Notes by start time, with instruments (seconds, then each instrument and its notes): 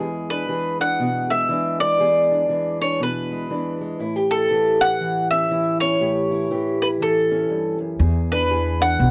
Already playing: steel-string acoustic guitar E3 G#3
0.00 steel-string acoustic guitar E2 G#4
0.30 steel-string acoustic guitar D4, mandolin B4
0.49 steel-string acoustic guitar E3 G#4
0.80 steel-string acoustic guitar D4, mandolin F#5
1.00 steel-string acoustic guitar B2
1.30 steel-string acoustic guitar G#3, mandolin E5
1.49 steel-string acoustic guitar E3 D4
1.80 steel-string acoustic guitar G#3, mandolin D5
2.00 steel-string acoustic guitar E2 G#4
2.31 steel-string acoustic guitar D4
2.49 steel-string acoustic guitar E3 G#4
2.81 steel-string acoustic guitar D4, mandolin C#5
3.00 steel-string acoustic guitar B2, mandolin B4
3.32 steel-string acoustic guitar G#3
3.50 steel-string acoustic guitar E3 D4
3.81 steel-string acoustic guitar G#3
3.99 steel-string acoustic guitar A2 E4
4.16 steel-string acoustic guitar G4
4.31 steel-string acoustic guitar E4, mandolin A4
4.51 steel-string acoustic guitar E3 G4
4.81 steel-string acoustic guitar E4, mandolin F#5
5.01 steel-string acoustic guitar E3
5.31 steel-string acoustic guitar C#4, mandolin E5
5.51 steel-string acoustic guitar E3 E4
5.80 steel-string acoustic guitar C#4, mandolin C#5
6.00 steel-string acoustic guitar A2 G4
6.31 steel-string acoustic guitar E4
6.51 steel-string acoustic guitar E3 G4
6.82 steel-string acoustic guitar E4, mandolin B4
7.01 steel-string acoustic guitar E3, mandolin A4
7.31 steel-string acoustic guitar C#4
7.49 steel-string acoustic guitar G2
7.80 steel-string acoustic guitar F#2
7.99 steel-string acoustic guitar E2 G#4, upright bass E2
8.32 steel-string acoustic guitar D4, mandolin B4
8.51 steel-string acoustic guitar E3 G#4
8.80 steel-string acoustic guitar D4, mandolin F#5
8.99 upright bass B1, steel-string acoustic guitar B2